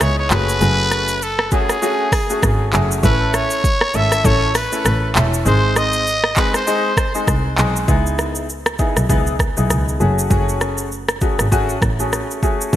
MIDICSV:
0, 0, Header, 1, 5, 480
1, 0, Start_track
1, 0, Tempo, 606061
1, 482, Time_signature, 4, 2, 24, 8
1, 10107, End_track
2, 0, Start_track
2, 0, Title_t, "Trumpet"
2, 0, Program_c, 0, 56
2, 14, Note_on_c, 0, 73, 103
2, 147, Note_off_c, 0, 73, 0
2, 152, Note_on_c, 0, 73, 93
2, 253, Note_on_c, 0, 71, 108
2, 265, Note_off_c, 0, 73, 0
2, 973, Note_on_c, 0, 69, 95
2, 985, Note_off_c, 0, 71, 0
2, 1208, Note_off_c, 0, 69, 0
2, 1213, Note_on_c, 0, 68, 90
2, 2136, Note_off_c, 0, 68, 0
2, 2413, Note_on_c, 0, 71, 91
2, 2654, Note_on_c, 0, 73, 100
2, 2666, Note_off_c, 0, 71, 0
2, 3134, Note_on_c, 0, 76, 109
2, 3146, Note_off_c, 0, 73, 0
2, 3374, Note_on_c, 0, 73, 104
2, 3386, Note_off_c, 0, 76, 0
2, 3608, Note_off_c, 0, 73, 0
2, 3615, Note_on_c, 0, 71, 83
2, 4057, Note_off_c, 0, 71, 0
2, 4334, Note_on_c, 0, 72, 105
2, 4575, Note_on_c, 0, 75, 120
2, 4586, Note_off_c, 0, 72, 0
2, 5049, Note_off_c, 0, 75, 0
2, 5054, Note_on_c, 0, 71, 91
2, 5178, Note_off_c, 0, 71, 0
2, 5194, Note_on_c, 0, 72, 90
2, 5737, Note_off_c, 0, 72, 0
2, 10107, End_track
3, 0, Start_track
3, 0, Title_t, "Grand piano"
3, 0, Program_c, 1, 0
3, 0, Note_on_c, 1, 59, 76
3, 0, Note_on_c, 1, 63, 71
3, 0, Note_on_c, 1, 64, 69
3, 0, Note_on_c, 1, 68, 81
3, 217, Note_off_c, 1, 59, 0
3, 218, Note_off_c, 1, 63, 0
3, 219, Note_off_c, 1, 64, 0
3, 219, Note_off_c, 1, 68, 0
3, 240, Note_on_c, 1, 57, 82
3, 242, Note_on_c, 1, 61, 76
3, 243, Note_on_c, 1, 66, 77
3, 245, Note_on_c, 1, 68, 90
3, 465, Note_off_c, 1, 57, 0
3, 466, Note_off_c, 1, 61, 0
3, 467, Note_off_c, 1, 66, 0
3, 468, Note_off_c, 1, 68, 0
3, 480, Note_on_c, 1, 57, 91
3, 482, Note_on_c, 1, 61, 81
3, 484, Note_on_c, 1, 66, 85
3, 485, Note_on_c, 1, 68, 97
3, 929, Note_off_c, 1, 57, 0
3, 930, Note_off_c, 1, 61, 0
3, 931, Note_off_c, 1, 66, 0
3, 931, Note_off_c, 1, 68, 0
3, 1200, Note_on_c, 1, 57, 78
3, 1202, Note_on_c, 1, 61, 73
3, 1203, Note_on_c, 1, 66, 74
3, 1205, Note_on_c, 1, 68, 87
3, 1390, Note_off_c, 1, 57, 0
3, 1391, Note_off_c, 1, 61, 0
3, 1392, Note_off_c, 1, 66, 0
3, 1392, Note_off_c, 1, 68, 0
3, 1440, Note_on_c, 1, 57, 100
3, 1442, Note_on_c, 1, 61, 93
3, 1444, Note_on_c, 1, 66, 87
3, 1445, Note_on_c, 1, 68, 103
3, 1630, Note_off_c, 1, 57, 0
3, 1631, Note_off_c, 1, 61, 0
3, 1632, Note_off_c, 1, 66, 0
3, 1633, Note_off_c, 1, 68, 0
3, 1819, Note_on_c, 1, 57, 77
3, 1821, Note_on_c, 1, 61, 69
3, 1822, Note_on_c, 1, 66, 68
3, 1824, Note_on_c, 1, 68, 86
3, 2137, Note_off_c, 1, 57, 0
3, 2138, Note_off_c, 1, 61, 0
3, 2139, Note_off_c, 1, 66, 0
3, 2140, Note_off_c, 1, 68, 0
3, 2160, Note_on_c, 1, 57, 80
3, 2162, Note_on_c, 1, 61, 77
3, 2163, Note_on_c, 1, 66, 76
3, 2165, Note_on_c, 1, 68, 91
3, 2385, Note_off_c, 1, 57, 0
3, 2386, Note_off_c, 1, 61, 0
3, 2387, Note_off_c, 1, 66, 0
3, 2388, Note_off_c, 1, 68, 0
3, 2400, Note_on_c, 1, 57, 89
3, 2402, Note_on_c, 1, 61, 86
3, 2404, Note_on_c, 1, 64, 85
3, 2405, Note_on_c, 1, 69, 100
3, 2849, Note_off_c, 1, 57, 0
3, 2850, Note_off_c, 1, 61, 0
3, 2851, Note_off_c, 1, 64, 0
3, 2851, Note_off_c, 1, 69, 0
3, 3120, Note_on_c, 1, 57, 76
3, 3121, Note_on_c, 1, 61, 73
3, 3123, Note_on_c, 1, 64, 71
3, 3124, Note_on_c, 1, 69, 91
3, 3310, Note_off_c, 1, 57, 0
3, 3311, Note_off_c, 1, 61, 0
3, 3312, Note_off_c, 1, 64, 0
3, 3312, Note_off_c, 1, 69, 0
3, 3360, Note_on_c, 1, 57, 100
3, 3361, Note_on_c, 1, 61, 89
3, 3363, Note_on_c, 1, 64, 86
3, 3365, Note_on_c, 1, 69, 109
3, 3550, Note_off_c, 1, 57, 0
3, 3551, Note_off_c, 1, 61, 0
3, 3551, Note_off_c, 1, 64, 0
3, 3552, Note_off_c, 1, 69, 0
3, 3739, Note_on_c, 1, 57, 79
3, 3741, Note_on_c, 1, 61, 67
3, 3742, Note_on_c, 1, 64, 71
3, 3744, Note_on_c, 1, 69, 84
3, 4057, Note_off_c, 1, 57, 0
3, 4058, Note_off_c, 1, 61, 0
3, 4059, Note_off_c, 1, 64, 0
3, 4059, Note_off_c, 1, 69, 0
3, 4080, Note_on_c, 1, 57, 78
3, 4081, Note_on_c, 1, 61, 76
3, 4083, Note_on_c, 1, 64, 78
3, 4084, Note_on_c, 1, 69, 90
3, 4305, Note_off_c, 1, 57, 0
3, 4306, Note_off_c, 1, 61, 0
3, 4306, Note_off_c, 1, 64, 0
3, 4307, Note_off_c, 1, 69, 0
3, 4320, Note_on_c, 1, 56, 90
3, 4322, Note_on_c, 1, 60, 82
3, 4323, Note_on_c, 1, 63, 84
3, 4325, Note_on_c, 1, 68, 103
3, 4769, Note_off_c, 1, 56, 0
3, 4770, Note_off_c, 1, 60, 0
3, 4770, Note_off_c, 1, 63, 0
3, 4771, Note_off_c, 1, 68, 0
3, 5039, Note_on_c, 1, 56, 78
3, 5041, Note_on_c, 1, 60, 73
3, 5043, Note_on_c, 1, 63, 72
3, 5044, Note_on_c, 1, 68, 86
3, 5230, Note_off_c, 1, 56, 0
3, 5231, Note_off_c, 1, 60, 0
3, 5231, Note_off_c, 1, 63, 0
3, 5232, Note_off_c, 1, 68, 0
3, 5279, Note_on_c, 1, 56, 95
3, 5281, Note_on_c, 1, 60, 85
3, 5283, Note_on_c, 1, 63, 89
3, 5284, Note_on_c, 1, 68, 108
3, 5470, Note_off_c, 1, 56, 0
3, 5471, Note_off_c, 1, 60, 0
3, 5471, Note_off_c, 1, 63, 0
3, 5472, Note_off_c, 1, 68, 0
3, 5659, Note_on_c, 1, 56, 74
3, 5660, Note_on_c, 1, 60, 68
3, 5662, Note_on_c, 1, 63, 70
3, 5663, Note_on_c, 1, 68, 83
3, 5977, Note_off_c, 1, 56, 0
3, 5977, Note_off_c, 1, 60, 0
3, 5978, Note_off_c, 1, 63, 0
3, 5979, Note_off_c, 1, 68, 0
3, 6000, Note_on_c, 1, 56, 85
3, 6001, Note_on_c, 1, 60, 73
3, 6002, Note_on_c, 1, 63, 72
3, 6004, Note_on_c, 1, 68, 91
3, 6225, Note_off_c, 1, 56, 0
3, 6226, Note_off_c, 1, 60, 0
3, 6226, Note_off_c, 1, 63, 0
3, 6227, Note_off_c, 1, 68, 0
3, 6240, Note_on_c, 1, 59, 89
3, 6242, Note_on_c, 1, 63, 84
3, 6243, Note_on_c, 1, 64, 80
3, 6245, Note_on_c, 1, 68, 98
3, 6689, Note_off_c, 1, 59, 0
3, 6690, Note_off_c, 1, 63, 0
3, 6691, Note_off_c, 1, 64, 0
3, 6692, Note_off_c, 1, 68, 0
3, 6959, Note_on_c, 1, 59, 74
3, 6961, Note_on_c, 1, 63, 69
3, 6963, Note_on_c, 1, 64, 69
3, 6964, Note_on_c, 1, 68, 85
3, 7150, Note_off_c, 1, 59, 0
3, 7151, Note_off_c, 1, 63, 0
3, 7151, Note_off_c, 1, 64, 0
3, 7152, Note_off_c, 1, 68, 0
3, 7199, Note_on_c, 1, 59, 96
3, 7201, Note_on_c, 1, 63, 88
3, 7203, Note_on_c, 1, 64, 85
3, 7204, Note_on_c, 1, 68, 99
3, 7390, Note_off_c, 1, 59, 0
3, 7391, Note_off_c, 1, 63, 0
3, 7391, Note_off_c, 1, 64, 0
3, 7392, Note_off_c, 1, 68, 0
3, 7578, Note_on_c, 1, 59, 74
3, 7580, Note_on_c, 1, 63, 66
3, 7581, Note_on_c, 1, 64, 68
3, 7583, Note_on_c, 1, 68, 81
3, 7897, Note_off_c, 1, 59, 0
3, 7897, Note_off_c, 1, 63, 0
3, 7898, Note_off_c, 1, 64, 0
3, 7899, Note_off_c, 1, 68, 0
3, 7919, Note_on_c, 1, 57, 79
3, 7921, Note_on_c, 1, 61, 71
3, 7922, Note_on_c, 1, 66, 72
3, 7924, Note_on_c, 1, 68, 86
3, 8144, Note_off_c, 1, 57, 0
3, 8145, Note_off_c, 1, 61, 0
3, 8146, Note_off_c, 1, 66, 0
3, 8147, Note_off_c, 1, 68, 0
3, 8159, Note_on_c, 1, 57, 86
3, 8160, Note_on_c, 1, 61, 78
3, 8162, Note_on_c, 1, 66, 80
3, 8163, Note_on_c, 1, 68, 99
3, 8608, Note_off_c, 1, 57, 0
3, 8609, Note_off_c, 1, 61, 0
3, 8610, Note_off_c, 1, 66, 0
3, 8611, Note_off_c, 1, 68, 0
3, 8880, Note_on_c, 1, 57, 79
3, 8881, Note_on_c, 1, 61, 68
3, 8883, Note_on_c, 1, 66, 73
3, 8884, Note_on_c, 1, 68, 80
3, 9070, Note_off_c, 1, 57, 0
3, 9071, Note_off_c, 1, 61, 0
3, 9071, Note_off_c, 1, 66, 0
3, 9072, Note_off_c, 1, 68, 0
3, 9119, Note_on_c, 1, 57, 97
3, 9120, Note_on_c, 1, 61, 87
3, 9122, Note_on_c, 1, 66, 88
3, 9124, Note_on_c, 1, 68, 104
3, 9309, Note_off_c, 1, 57, 0
3, 9310, Note_off_c, 1, 61, 0
3, 9311, Note_off_c, 1, 66, 0
3, 9312, Note_off_c, 1, 68, 0
3, 9499, Note_on_c, 1, 57, 75
3, 9501, Note_on_c, 1, 61, 68
3, 9502, Note_on_c, 1, 66, 67
3, 9504, Note_on_c, 1, 68, 83
3, 9817, Note_off_c, 1, 57, 0
3, 9818, Note_off_c, 1, 61, 0
3, 9819, Note_off_c, 1, 66, 0
3, 9820, Note_off_c, 1, 68, 0
3, 9840, Note_on_c, 1, 57, 81
3, 9842, Note_on_c, 1, 61, 74
3, 9843, Note_on_c, 1, 66, 74
3, 9845, Note_on_c, 1, 68, 87
3, 10065, Note_off_c, 1, 57, 0
3, 10066, Note_off_c, 1, 61, 0
3, 10067, Note_off_c, 1, 66, 0
3, 10068, Note_off_c, 1, 68, 0
3, 10080, Note_on_c, 1, 57, 89
3, 10082, Note_on_c, 1, 61, 86
3, 10107, Note_off_c, 1, 57, 0
3, 10107, Note_off_c, 1, 61, 0
3, 10107, End_track
4, 0, Start_track
4, 0, Title_t, "Double bass"
4, 0, Program_c, 2, 43
4, 3, Note_on_c, 2, 37, 93
4, 238, Note_off_c, 2, 37, 0
4, 243, Note_on_c, 2, 30, 99
4, 425, Note_off_c, 2, 30, 0
4, 482, Note_on_c, 2, 30, 113
4, 1171, Note_off_c, 2, 30, 0
4, 1921, Note_on_c, 2, 32, 95
4, 2104, Note_off_c, 2, 32, 0
4, 2163, Note_on_c, 2, 30, 96
4, 2345, Note_off_c, 2, 30, 0
4, 2403, Note_on_c, 2, 33, 113
4, 2690, Note_off_c, 2, 33, 0
4, 3123, Note_on_c, 2, 32, 93
4, 3305, Note_off_c, 2, 32, 0
4, 3364, Note_on_c, 2, 33, 100
4, 3651, Note_off_c, 2, 33, 0
4, 3842, Note_on_c, 2, 33, 95
4, 4024, Note_off_c, 2, 33, 0
4, 4082, Note_on_c, 2, 28, 87
4, 4265, Note_off_c, 2, 28, 0
4, 4322, Note_on_c, 2, 32, 104
4, 5011, Note_off_c, 2, 32, 0
4, 5762, Note_on_c, 2, 36, 91
4, 5944, Note_off_c, 2, 36, 0
4, 6002, Note_on_c, 2, 35, 94
4, 6184, Note_off_c, 2, 35, 0
4, 6243, Note_on_c, 2, 37, 97
4, 7070, Note_off_c, 2, 37, 0
4, 7102, Note_on_c, 2, 35, 87
4, 7178, Note_off_c, 2, 35, 0
4, 7203, Note_on_c, 2, 37, 85
4, 7491, Note_off_c, 2, 37, 0
4, 7582, Note_on_c, 2, 35, 90
4, 7658, Note_off_c, 2, 35, 0
4, 7682, Note_on_c, 2, 37, 89
4, 7864, Note_off_c, 2, 37, 0
4, 7922, Note_on_c, 2, 30, 98
4, 8104, Note_off_c, 2, 30, 0
4, 8162, Note_on_c, 2, 30, 104
4, 8990, Note_off_c, 2, 30, 0
4, 9022, Note_on_c, 2, 32, 89
4, 9280, Note_off_c, 2, 32, 0
4, 9360, Note_on_c, 2, 33, 92
4, 9649, Note_off_c, 2, 33, 0
4, 10083, Note_on_c, 2, 33, 98
4, 10107, Note_off_c, 2, 33, 0
4, 10107, End_track
5, 0, Start_track
5, 0, Title_t, "Drums"
5, 4, Note_on_c, 9, 82, 86
5, 5, Note_on_c, 9, 37, 96
5, 83, Note_off_c, 9, 82, 0
5, 84, Note_off_c, 9, 37, 0
5, 243, Note_on_c, 9, 39, 102
5, 244, Note_on_c, 9, 82, 57
5, 322, Note_off_c, 9, 39, 0
5, 323, Note_off_c, 9, 82, 0
5, 388, Note_on_c, 9, 82, 84
5, 467, Note_off_c, 9, 82, 0
5, 482, Note_on_c, 9, 82, 70
5, 561, Note_off_c, 9, 82, 0
5, 722, Note_on_c, 9, 82, 58
5, 724, Note_on_c, 9, 37, 95
5, 801, Note_off_c, 9, 82, 0
5, 804, Note_off_c, 9, 37, 0
5, 855, Note_on_c, 9, 82, 70
5, 934, Note_off_c, 9, 82, 0
5, 967, Note_on_c, 9, 82, 65
5, 1046, Note_off_c, 9, 82, 0
5, 1099, Note_on_c, 9, 37, 108
5, 1179, Note_off_c, 9, 37, 0
5, 1198, Note_on_c, 9, 82, 53
5, 1203, Note_on_c, 9, 36, 96
5, 1277, Note_off_c, 9, 82, 0
5, 1282, Note_off_c, 9, 36, 0
5, 1342, Note_on_c, 9, 37, 90
5, 1342, Note_on_c, 9, 82, 72
5, 1421, Note_off_c, 9, 37, 0
5, 1422, Note_off_c, 9, 82, 0
5, 1445, Note_on_c, 9, 82, 78
5, 1524, Note_off_c, 9, 82, 0
5, 1680, Note_on_c, 9, 36, 89
5, 1682, Note_on_c, 9, 46, 58
5, 1682, Note_on_c, 9, 82, 58
5, 1684, Note_on_c, 9, 37, 97
5, 1759, Note_off_c, 9, 36, 0
5, 1761, Note_off_c, 9, 46, 0
5, 1761, Note_off_c, 9, 82, 0
5, 1763, Note_off_c, 9, 37, 0
5, 1821, Note_on_c, 9, 82, 75
5, 1900, Note_off_c, 9, 82, 0
5, 1922, Note_on_c, 9, 36, 93
5, 1924, Note_on_c, 9, 82, 83
5, 1925, Note_on_c, 9, 37, 96
5, 2001, Note_off_c, 9, 36, 0
5, 2003, Note_off_c, 9, 82, 0
5, 2005, Note_off_c, 9, 37, 0
5, 2163, Note_on_c, 9, 39, 101
5, 2164, Note_on_c, 9, 82, 57
5, 2242, Note_off_c, 9, 39, 0
5, 2243, Note_off_c, 9, 82, 0
5, 2308, Note_on_c, 9, 82, 84
5, 2387, Note_off_c, 9, 82, 0
5, 2402, Note_on_c, 9, 82, 74
5, 2403, Note_on_c, 9, 36, 114
5, 2481, Note_off_c, 9, 82, 0
5, 2482, Note_off_c, 9, 36, 0
5, 2643, Note_on_c, 9, 82, 57
5, 2645, Note_on_c, 9, 37, 93
5, 2722, Note_off_c, 9, 82, 0
5, 2724, Note_off_c, 9, 37, 0
5, 2775, Note_on_c, 9, 82, 70
5, 2854, Note_off_c, 9, 82, 0
5, 2883, Note_on_c, 9, 36, 96
5, 2887, Note_on_c, 9, 82, 63
5, 2963, Note_off_c, 9, 36, 0
5, 2966, Note_off_c, 9, 82, 0
5, 3019, Note_on_c, 9, 37, 108
5, 3098, Note_off_c, 9, 37, 0
5, 3118, Note_on_c, 9, 82, 54
5, 3197, Note_off_c, 9, 82, 0
5, 3262, Note_on_c, 9, 37, 91
5, 3263, Note_on_c, 9, 82, 77
5, 3341, Note_off_c, 9, 37, 0
5, 3342, Note_off_c, 9, 82, 0
5, 3364, Note_on_c, 9, 36, 103
5, 3365, Note_on_c, 9, 82, 84
5, 3443, Note_off_c, 9, 36, 0
5, 3444, Note_off_c, 9, 82, 0
5, 3602, Note_on_c, 9, 46, 58
5, 3602, Note_on_c, 9, 82, 58
5, 3604, Note_on_c, 9, 37, 100
5, 3681, Note_off_c, 9, 46, 0
5, 3681, Note_off_c, 9, 82, 0
5, 3683, Note_off_c, 9, 37, 0
5, 3741, Note_on_c, 9, 82, 74
5, 3820, Note_off_c, 9, 82, 0
5, 3844, Note_on_c, 9, 82, 84
5, 3845, Note_on_c, 9, 37, 99
5, 3923, Note_off_c, 9, 82, 0
5, 3925, Note_off_c, 9, 37, 0
5, 4083, Note_on_c, 9, 39, 101
5, 4084, Note_on_c, 9, 82, 56
5, 4162, Note_off_c, 9, 39, 0
5, 4163, Note_off_c, 9, 82, 0
5, 4228, Note_on_c, 9, 82, 83
5, 4307, Note_off_c, 9, 82, 0
5, 4322, Note_on_c, 9, 82, 70
5, 4401, Note_off_c, 9, 82, 0
5, 4562, Note_on_c, 9, 82, 58
5, 4564, Note_on_c, 9, 37, 95
5, 4641, Note_off_c, 9, 82, 0
5, 4643, Note_off_c, 9, 37, 0
5, 4695, Note_on_c, 9, 82, 70
5, 4774, Note_off_c, 9, 82, 0
5, 4807, Note_on_c, 9, 82, 63
5, 4886, Note_off_c, 9, 82, 0
5, 4939, Note_on_c, 9, 37, 107
5, 5018, Note_off_c, 9, 37, 0
5, 5038, Note_on_c, 9, 82, 54
5, 5040, Note_on_c, 9, 39, 90
5, 5043, Note_on_c, 9, 36, 97
5, 5118, Note_off_c, 9, 82, 0
5, 5119, Note_off_c, 9, 39, 0
5, 5122, Note_off_c, 9, 36, 0
5, 5181, Note_on_c, 9, 37, 88
5, 5182, Note_on_c, 9, 82, 73
5, 5261, Note_off_c, 9, 37, 0
5, 5261, Note_off_c, 9, 82, 0
5, 5285, Note_on_c, 9, 82, 80
5, 5364, Note_off_c, 9, 82, 0
5, 5520, Note_on_c, 9, 36, 88
5, 5522, Note_on_c, 9, 82, 61
5, 5524, Note_on_c, 9, 37, 103
5, 5599, Note_off_c, 9, 36, 0
5, 5601, Note_off_c, 9, 82, 0
5, 5603, Note_off_c, 9, 37, 0
5, 5661, Note_on_c, 9, 82, 72
5, 5740, Note_off_c, 9, 82, 0
5, 5761, Note_on_c, 9, 36, 96
5, 5764, Note_on_c, 9, 82, 85
5, 5765, Note_on_c, 9, 37, 90
5, 5841, Note_off_c, 9, 36, 0
5, 5843, Note_off_c, 9, 82, 0
5, 5844, Note_off_c, 9, 37, 0
5, 6003, Note_on_c, 9, 39, 94
5, 6004, Note_on_c, 9, 82, 57
5, 6082, Note_off_c, 9, 39, 0
5, 6083, Note_off_c, 9, 82, 0
5, 6148, Note_on_c, 9, 82, 81
5, 6227, Note_off_c, 9, 82, 0
5, 6242, Note_on_c, 9, 82, 65
5, 6243, Note_on_c, 9, 36, 112
5, 6322, Note_off_c, 9, 36, 0
5, 6322, Note_off_c, 9, 82, 0
5, 6387, Note_on_c, 9, 82, 61
5, 6466, Note_off_c, 9, 82, 0
5, 6482, Note_on_c, 9, 82, 56
5, 6485, Note_on_c, 9, 37, 86
5, 6562, Note_off_c, 9, 82, 0
5, 6564, Note_off_c, 9, 37, 0
5, 6615, Note_on_c, 9, 82, 83
5, 6694, Note_off_c, 9, 82, 0
5, 6727, Note_on_c, 9, 82, 61
5, 6806, Note_off_c, 9, 82, 0
5, 6859, Note_on_c, 9, 37, 109
5, 6860, Note_on_c, 9, 82, 50
5, 6939, Note_off_c, 9, 37, 0
5, 6939, Note_off_c, 9, 82, 0
5, 6958, Note_on_c, 9, 82, 51
5, 6963, Note_on_c, 9, 36, 91
5, 7037, Note_off_c, 9, 82, 0
5, 7042, Note_off_c, 9, 36, 0
5, 7101, Note_on_c, 9, 37, 89
5, 7102, Note_on_c, 9, 82, 88
5, 7181, Note_off_c, 9, 37, 0
5, 7181, Note_off_c, 9, 82, 0
5, 7203, Note_on_c, 9, 36, 102
5, 7204, Note_on_c, 9, 82, 77
5, 7283, Note_off_c, 9, 36, 0
5, 7283, Note_off_c, 9, 82, 0
5, 7340, Note_on_c, 9, 82, 58
5, 7419, Note_off_c, 9, 82, 0
5, 7440, Note_on_c, 9, 36, 84
5, 7442, Note_on_c, 9, 82, 55
5, 7444, Note_on_c, 9, 37, 95
5, 7519, Note_off_c, 9, 36, 0
5, 7521, Note_off_c, 9, 82, 0
5, 7523, Note_off_c, 9, 37, 0
5, 7580, Note_on_c, 9, 82, 85
5, 7660, Note_off_c, 9, 82, 0
5, 7684, Note_on_c, 9, 82, 83
5, 7685, Note_on_c, 9, 37, 90
5, 7763, Note_off_c, 9, 82, 0
5, 7764, Note_off_c, 9, 37, 0
5, 7828, Note_on_c, 9, 82, 60
5, 7907, Note_off_c, 9, 82, 0
5, 7924, Note_on_c, 9, 82, 53
5, 8003, Note_off_c, 9, 82, 0
5, 8068, Note_on_c, 9, 82, 99
5, 8147, Note_off_c, 9, 82, 0
5, 8162, Note_on_c, 9, 36, 117
5, 8162, Note_on_c, 9, 82, 71
5, 8241, Note_off_c, 9, 82, 0
5, 8242, Note_off_c, 9, 36, 0
5, 8307, Note_on_c, 9, 82, 62
5, 8386, Note_off_c, 9, 82, 0
5, 8402, Note_on_c, 9, 82, 55
5, 8404, Note_on_c, 9, 37, 89
5, 8482, Note_off_c, 9, 82, 0
5, 8484, Note_off_c, 9, 37, 0
5, 8535, Note_on_c, 9, 82, 81
5, 8614, Note_off_c, 9, 82, 0
5, 8647, Note_on_c, 9, 82, 60
5, 8726, Note_off_c, 9, 82, 0
5, 8779, Note_on_c, 9, 37, 106
5, 8780, Note_on_c, 9, 82, 49
5, 8859, Note_off_c, 9, 37, 0
5, 8859, Note_off_c, 9, 82, 0
5, 8878, Note_on_c, 9, 82, 53
5, 8883, Note_on_c, 9, 36, 94
5, 8957, Note_off_c, 9, 82, 0
5, 8962, Note_off_c, 9, 36, 0
5, 9022, Note_on_c, 9, 37, 92
5, 9022, Note_on_c, 9, 82, 90
5, 9101, Note_off_c, 9, 37, 0
5, 9102, Note_off_c, 9, 82, 0
5, 9124, Note_on_c, 9, 36, 99
5, 9124, Note_on_c, 9, 82, 76
5, 9203, Note_off_c, 9, 36, 0
5, 9204, Note_off_c, 9, 82, 0
5, 9260, Note_on_c, 9, 82, 58
5, 9340, Note_off_c, 9, 82, 0
5, 9360, Note_on_c, 9, 36, 89
5, 9362, Note_on_c, 9, 82, 55
5, 9364, Note_on_c, 9, 37, 97
5, 9439, Note_off_c, 9, 36, 0
5, 9441, Note_off_c, 9, 82, 0
5, 9443, Note_off_c, 9, 37, 0
5, 9501, Note_on_c, 9, 82, 86
5, 9580, Note_off_c, 9, 82, 0
5, 9604, Note_on_c, 9, 82, 79
5, 9606, Note_on_c, 9, 37, 91
5, 9684, Note_off_c, 9, 82, 0
5, 9685, Note_off_c, 9, 37, 0
5, 9749, Note_on_c, 9, 82, 60
5, 9828, Note_off_c, 9, 82, 0
5, 9842, Note_on_c, 9, 36, 85
5, 9844, Note_on_c, 9, 82, 54
5, 9921, Note_off_c, 9, 36, 0
5, 9923, Note_off_c, 9, 82, 0
5, 9988, Note_on_c, 9, 82, 100
5, 10067, Note_off_c, 9, 82, 0
5, 10082, Note_on_c, 9, 82, 69
5, 10083, Note_on_c, 9, 36, 112
5, 10107, Note_off_c, 9, 36, 0
5, 10107, Note_off_c, 9, 82, 0
5, 10107, End_track
0, 0, End_of_file